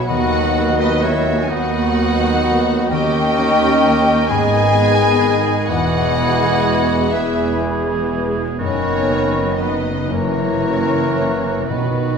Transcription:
Already playing: harp B2 F#3 D#4 F#4 B4, flute B5
0.07 cello section D#2, double bass section D#2, bassoon D#3, harp D#3, viola section F#3 B3, french horn section B3 F#4, violin section F#4 F#5, oboe F#4, clarinet D#5
0.56 viola section F#3 B3, harp D#4
0.79 violin section D#4 D#5, clarinet B4
1.02 violin section E4 E5, clarinet C#5
1.41 violin section G#5
1.48 cello section D#2, double bass section D#2, bassoon D#3, french horn section B3 F#4, oboe D#4, harp D#4, violin section F#4 F#5, clarinet D#5, flute B5
1.96 viola section F#3 B3
2.44 harp B4
2.90 cello section D#2, double bass section D#2, bassoon D#3, harp D#3, french horn section C#4 A#4, violin section G4 G5, oboe A#4, clarinet D#5, flute C#6
3.37 viola section A#3 C#4, harp C#4
3.84 harp D#4 A#4
4.29 double bass section G#1, cello section G#2, harp G#2, bassoon D#3, viola section G#3 B3, french horn section B3 G#4, violin section G#4 G#5, oboe G#4, clarinet D#5, flute B5
4.75 viola section G#3 B3, harp B3
5.22 harp D#4 G#4
5.69 double bass section E1, harp E2, cello section E2, bassoon E3, french horn section B3 G#4, violin section F#4 F#5, oboe G#4, clarinet D#5, flute B5
6.18 viola section G#3 B3, harp B3
6.64 harp E4
7.12 double bass section E1, cello section E2, bassoon E3, french horn section B3 G#4, violin section E4 E5, oboe G#4, harp G#4, clarinet B4, flute B5
7.60 viola section G#3 B3, harp B4
8.10 harp G#4
8.59 double bass section F#1, harp F#2, cello section F#2, bassoon D#3, viola section D#3 B3, french horn section B3 D#4, violin section C#4 C#5, oboe F#4, clarinet A#4, flute B5
9.10 harp B3
9.59 harp D#4 F#4, violin section D#4 D#5, clarinet B4
10.10 harp F#2, bassoon E3, viola section E3 A#3, french horn section A#3 E4, violin section C#4 C#5, oboe F#4, clarinet A#4, flute A#5
10.62 harp A#3
11.15 harp E4 F#4
11.68 double bass section B1, harp B2, cello section B2, timpani B2, bassoon D#3, viola section D#3 B3, violin section B3 B4, french horn section B3 D#4, oboe F#4, clarinet F#4, flute B5

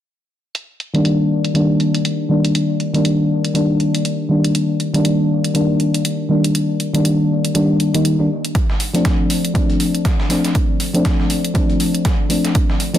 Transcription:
0.55 closed hi-hat
0.80 closed hi-hat
0.94 fm electric piano D#3 G3 A#3 D4, closed hi-hat
1.05 closed hi-hat
1.45 closed hi-hat
1.54 fm electric piano D#3 G3 A#3 D4, closed hi-hat
1.80 closed hi-hat
1.95 closed hi-hat
2.05 closed hi-hat
2.29 fm electric piano D#3 G3 A#3 D4
2.45 closed hi-hat
2.55 closed hi-hat
2.80 closed hi-hat
2.94 fm electric piano D#3 G3 A#3 D4, closed hi-hat
3.05 closed hi-hat
3.45 closed hi-hat
3.54 fm electric piano D#3 G3 A#3 D4, closed hi-hat
3.80 closed hi-hat
3.95 closed hi-hat
4.05 closed hi-hat
4.29 fm electric piano D#3 G3 A#3 D4
4.44 closed hi-hat
4.55 closed hi-hat
4.80 closed hi-hat
4.94 fm electric piano D#3 G3 A#3 D4, closed hi-hat
5.05 closed hi-hat
5.44 closed hi-hat
5.54 fm electric piano D#3 G3 A#3 D4, closed hi-hat
5.80 closed hi-hat
5.94 closed hi-hat
6.05 closed hi-hat
6.29 fm electric piano D#3 G3 A#3 D4
6.44 closed hi-hat
6.55 closed hi-hat
6.80 closed hi-hat
6.93 fm electric piano D#3 G3 A#3 D4, closed hi-hat
7.05 closed hi-hat
7.45 closed hi-hat
7.54 fm electric piano D#3 G3 A#3 D4, closed hi-hat
7.80 closed hi-hat
7.94 fm electric piano D#3 G3 A#3 D#4, closed hi-hat
8.05 closed hi-hat
8.19 fm electric piano D#3 G3 A#3 D4
8.45 closed hi-hat
8.55 kick, closed hi-hat
8.70 snare
8.80 closed hi-hat, open hi-hat
8.93 fm electric piano F3 A3 C4 D4, closed hi-hat
9.05 kick, snare, closed hi-hat
9.30 closed hi-hat, open hi-hat
9.45 closed hi-hat
9.54 fm electric piano F3 A3 C4 D4, kick, closed hi-hat
9.70 closed hi-hat
9.80 closed hi-hat, open hi-hat
9.95 closed hi-hat
10.05 kick, snare, closed hi-hat
10.20 snare
10.29 fm electric piano F3 A3 C4 D4, snare, closed hi-hat, open hi-hat
10.45 snare, closed hi-hat
10.55 kick, closed hi-hat
10.80 closed hi-hat, open hi-hat
10.93 fm electric piano F3 A3 C4 D4, closed hi-hat
11.05 kick, snare, closed hi-hat
11.20 snare
11.30 closed hi-hat, open hi-hat
11.45 closed hi-hat
11.54 fm electric piano F3 A3 C4 D4, kick, closed hi-hat
11.70 closed hi-hat
11.80 closed hi-hat, open hi-hat
11.95 closed hi-hat
12.05 kick, snare, closed hi-hat
12.29 fm electric piano F3 A3 C4 D4, closed hi-hat, open hi-hat
12.45 snare, closed hi-hat
12.55 kick, closed hi-hat
12.70 snare
12.80 closed hi-hat, open hi-hat
12.93 fm electric piano F3 A3 C4, closed hi-hat

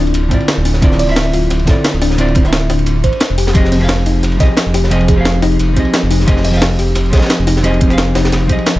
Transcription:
Already playing: detuned saw bass D1, hollow-body jazz guitar D3 C4 E4 F4 E5, synth arpeggio sound D4
0.07 ride
0.14 detuned saw bass D1, closed hi-hat, ride
0.28 detuned saw bass A1, hollow-body jazz guitar D3 C4 E4, synth arpeggio sound C4, kick, closed hi-hat, ride
0.33 hollow-body jazz guitar F4 D5
0.40 ride
0.48 snare, closed hi-hat, ride
0.57 detuned saw bass D1
0.65 synth arpeggio sound D4, open hi-hat, ride
0.74 snare
0.81 detuned saw bass D1, hollow-body jazz guitar D3 C4 E4 F4 D5, kick, closed hi-hat, ride
0.92 snare
0.99 synth arpeggio sound D5, closed hi-hat, open hi-hat
1.06 detuned saw bass D1, hollow-body jazz guitar D3 C4 E4, ride
1.10 hollow-body jazz guitar F4 E5
1.16 snare, closed hi-hat, ride
1.33 detuned saw bass D1, synth arpeggio sound F4, open hi-hat, ride
1.50 detuned saw bass D1, snare, closed hi-hat, ride
1.59 ride
1.65 detuned saw bass A1, hollow-body jazz guitar D3 C4 E4, synth arpeggio sound A4, kick, snare, closed hi-hat, ride
1.69 hollow-body jazz guitar F4 D5
1.84 snare, closed hi-hat, ride
1.94 detuned saw bass D1, ride
2.02 synth arpeggio sound D4, snare, open hi-hat, ride
2.10 snare
2.17 detuned saw bass D1, hollow-body jazz guitar D3 C4 E4 F4 D5, closed hi-hat, ride
2.28 ride
2.35 synth arpeggio sound C4, kick, closed hi-hat, ride
2.42 detuned saw bass D1, hollow-body jazz guitar D3 C4 E4, snare
2.46 hollow-body jazz guitar F4 E5
2.53 snare, closed hi-hat, ride
2.62 ride
2.70 detuned saw bass D1, synth arpeggio sound D4, snare, open hi-hat, ride
2.79 ride
2.86 detuned saw bass D1, closed hi-hat, ride
3.04 detuned saw bass A1, synth arpeggio sound C5, kick, closed hi-hat, ride
3.12 ride
3.20 snare, closed hi-hat, ride
3.30 detuned saw bass F1, ride
3.38 synth arpeggio sound G4, open hi-hat, ride
3.47 snare, ride
3.54 detuned saw bass F1, hollow-body jazz guitar F3 C4 G4 G#4 D#5, kick, closed hi-hat, ride
3.65 snare
3.72 synth arpeggio sound C4, closed hi-hat, open hi-hat
3.78 detuned saw bass F1, hollow-body jazz guitar F3 C4 G4, ride
3.83 hollow-body jazz guitar G#4 F5
3.88 snare, closed hi-hat, ride
4.06 detuned saw bass F1, synth arpeggio sound D#4, open hi-hat, ride
4.23 detuned saw bass F1, snare, closed hi-hat, ride
4.32 ride
4.37 detuned saw bass C2, hollow-body jazz guitar F3 C4 G4, synth arpeggio sound D#5, kick, snare, closed hi-hat, ride
4.42 hollow-body jazz guitar G#4 D#5
4.57 snare, closed hi-hat, ride
4.66 detuned saw bass F1, ride
4.74 synth arpeggio sound G4, snare, open hi-hat, ride
4.84 snare
4.90 detuned saw bass F1, hollow-body jazz guitar F3 C4 G4 G#4 D#5, closed hi-hat, ride
5.01 ride
5.08 synth arpeggio sound G#4, kick, closed hi-hat, ride
5.15 detuned saw bass F1, hollow-body jazz guitar F3 C4 G4
5.19 hollow-body jazz guitar G#4 F5
5.25 snare, closed hi-hat, ride
5.35 ride
5.42 detuned saw bass F1, synth arpeggio sound D#4, snare, open hi-hat, ride
5.51 ride
5.59 detuned saw bass F1, closed hi-hat, ride
5.74 detuned saw bass C2, hollow-body jazz guitar F3 C4 G4, synth arpeggio sound C4, kick, closed hi-hat, ride
5.78 hollow-body jazz guitar G#4 D#5
5.85 ride
5.93 snare, closed hi-hat, ride
6.03 detuned saw bass F1
6.11 synth arpeggio sound D#4, open hi-hat, ride
6.20 snare
6.26 detuned saw bass F1, hollow-body jazz guitar F3 C4 G4 G#4 D#5, kick, closed hi-hat, ride
6.37 snare
6.44 synth arpeggio sound D#5, closed hi-hat, open hi-hat
6.51 detuned saw bass F1, hollow-body jazz guitar F3 C4 G4, ride
6.55 hollow-body jazz guitar G#4 F5
6.62 snare, closed hi-hat, ride
6.79 detuned saw bass F1, synth arpeggio sound G4, open hi-hat, ride
6.95 detuned saw bass F1, snare, closed hi-hat, ride
7.06 ride
7.10 detuned saw bass C2, hollow-body jazz guitar F3 C4 G4, synth arpeggio sound G#4, kick, snare, closed hi-hat, ride
7.14 hollow-body jazz guitar G#4 D#5, snare, ride
7.22 snare, ride
7.26 snare, ride
7.30 snare, closed hi-hat, ride
7.39 detuned saw bass F1, ride
7.47 synth arpeggio sound D#4, snare, open hi-hat, ride
7.56 snare
7.63 detuned saw bass F1, hollow-body jazz guitar F3 C4 G4 G#4 D#5, closed hi-hat, ride
7.74 ride
7.81 synth arpeggio sound C4, kick, closed hi-hat, ride
7.87 detuned saw bass F1, hollow-body jazz guitar F3 C4 G4, snare
7.92 hollow-body jazz guitar G#4 F5
7.98 snare, closed hi-hat, ride
8.07 ride
8.15 detuned saw bass F1, synth arpeggio sound D#4, snare, open hi-hat, ride
8.25 snare, ride
8.32 detuned saw bass F1, snare, closed hi-hat, ride
8.46 detuned saw bass C2, hollow-body jazz guitar F3 C4 G4, synth arpeggio sound C4, kick, closed hi-hat, ride
8.51 hollow-body jazz guitar G#4 D#5
8.59 ride
8.66 snare, closed hi-hat, ride
8.76 detuned saw bass F1

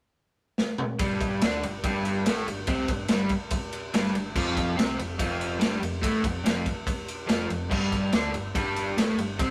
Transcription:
0.58 snare
0.78 mid tom
0.99 fingered electric bass G1, overdriven electric guitar G2 G3, kick, ride
1.21 kick, ride
1.41 fingered electric bass D2, overdriven electric guitar D3 D4, snare, ride
1.63 fingered electric bass G1, overdriven electric guitar G2, ride
1.84 fingered electric bass G1, overdriven electric guitar G2 G3, kick, ride
2.05 ride
2.25 fingered electric bass A1, overdriven electric guitar A2 A3, snare, ride
2.37 snare
2.47 fingered electric bass G1, overdriven electric guitar G2, ride
2.67 fingered electric bass C2, overdriven electric guitar C3 C4, kick, ride
2.88 fingered electric bass G1, overdriven electric guitar G2, kick, ride
3.08 fingered electric bass G1, overdriven electric guitar G2 G3, snare, ride
3.29 kick, ride
3.50 kick, ride
3.73 ride
3.93 fingered electric bass G1, overdriven electric guitar G2 G3, snare, ride
4.06 snare
4.14 fingered electric bass G1, overdriven electric guitar G2, ride
4.35 fingered electric bass F1, overdriven electric guitar F2 F3, kick, crash
4.57 kick, ride
4.76 fingered electric bass C2, overdriven electric guitar C3 C4, snare, ride
4.97 fingered electric bass F1, overdriven electric guitar F2, ride
5.18 fingered electric bass F1, overdriven electric guitar F2 F3, kick, ride
5.41 ride
5.59 fingered electric bass G1, overdriven electric guitar G2 G3, snare, ride
5.72 snare
5.81 fingered electric bass F1, overdriven electric guitar F2, ride
6.02 fingered electric bass A1, overdriven electric guitar A2 A3, kick, ride
6.23 fingered electric bass F1, overdriven electric guitar F2, kick, ride
6.44 fingered electric bass F1, overdriven electric guitar F2 F3, snare, ride
6.66 kick, ride
6.87 kick, ride
7.08 ride
7.27 fingered electric bass F1, overdriven electric guitar F2 F3, snare, ride
7.49 fingered electric bass F1, overdriven electric guitar F2, ride
7.70 fingered electric bass G1, overdriven electric guitar G2 G3, kick, crash
7.92 kick, ride
8.12 fingered electric bass D2, overdriven electric guitar D3 D4, snare, ride
8.33 fingered electric bass G1, overdriven electric guitar G2, ride
8.54 fingered electric bass G1, overdriven electric guitar G2 G3, kick, ride
8.76 ride
8.97 fingered electric bass A1, overdriven electric guitar A2 A3, snare, ride
9.09 snare
9.16 fingered electric bass G1, overdriven electric guitar G2, ride
9.39 fingered electric bass C2, overdriven electric guitar C3 C4, kick, ride

